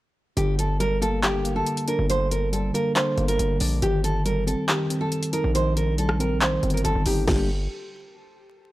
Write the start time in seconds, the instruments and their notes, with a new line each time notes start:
0.37 808-style bass G1, tine electric piano D3, nylon-string guitar G4, closed hi-hat
0.59 nylon-string guitar A4, closed hi-hat
0.80 tine electric piano G3, nylon-string guitar A#4, closed hi-hat
1.02 tine electric piano A#3, nylon-string guitar A4, closed hi-hat
1.23 tine electric piano D3, nylon-string guitar G4, clap, closed hi-hat
1.45 tine electric piano A#3, closed hi-hat
1.56 nylon-string guitar A4
1.66 closed hi-hat
1.77 closed hi-hat
1.88 tine electric piano D4, nylon-string guitar A#4, closed hi-hat
1.99 808-style bass G1
2.10 tine electric piano D3, nylon-string guitar C5, closed hi-hat
2.31 nylon-string guitar A#4, closed hi-hat
2.53 tine electric piano G3, nylon-string guitar A4, closed hi-hat
2.74 tine electric piano A#3, nylon-string guitar A#4, closed hi-hat
2.95 tine electric piano D3, nylon-string guitar C5, clap, closed hi-hat
3.18 808-style bass G1, tine electric piano A#3, closed hi-hat
3.28 nylon-string guitar A#4, closed hi-hat
3.39 808-style bass G1, closed hi-hat
3.60 808-style bass A#1, tine electric piano D4, nylon-string guitar D5, open hi-hat
3.82 808-style bass G1, tine electric piano D#3, nylon-string guitar G4, closed hi-hat
4.04 nylon-string guitar A4, closed hi-hat
4.25 tine electric piano G3, nylon-string guitar A#4, closed hi-hat
4.47 tine electric piano C4, nylon-string guitar A4, closed hi-hat
4.69 tine electric piano D#3, nylon-string guitar G4, clap, closed hi-hat
4.90 tine electric piano C4, closed hi-hat
5.01 nylon-string guitar A4
5.12 closed hi-hat
5.23 closed hi-hat
5.33 tine electric piano D#4, nylon-string guitar A#4, closed hi-hat
5.44 808-style bass A#1
5.55 tine electric piano D#3, nylon-string guitar C5, closed hi-hat
5.77 nylon-string guitar A#4, closed hi-hat
5.98 tine electric piano G3, nylon-string guitar A4, closed hi-hat
6.09 cross-stick
6.20 tine electric piano C4, nylon-string guitar A#4, closed hi-hat
6.41 tine electric piano D#3, nylon-string guitar C5, clap, closed hi-hat
6.63 808-style bass G1, tine electric piano C4, closed hi-hat
6.70 nylon-string guitar A#4, closed hi-hat
6.77 closed hi-hat
6.84 808-style bass G1, nylon-string guitar A4, closed hi-hat
6.95 808-style bass G1
7.06 808-style bass G1, tine electric piano D#4, nylon-string guitar G4, open hi-hat
7.28 808-style bass G1, tine electric piano D3 G3 A#3 D4, nylon-string guitar G4, kick, snare, crash